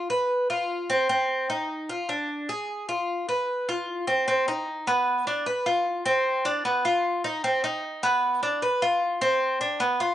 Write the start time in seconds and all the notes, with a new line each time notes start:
0.10 B4
0.50 F4
0.90 C4
1.09 C4
1.50 D#4
1.89 F4
2.09 D4
2.49 G#4
2.89 F4
3.29 B4
3.69 F4
4.07 C4
4.28 C4
4.48 D#4
4.87 B3
5.27 D4
5.46 B4
5.66 F4
6.05 C4
6.45 D4
6.65 B3
6.85 F4
7.24 D#4
7.44 C4
7.64 D#4
8.03 B3
8.43 D4
8.62 B4
8.82 F4
9.21 C4
9.61 D4
9.80 B3
10.00 F4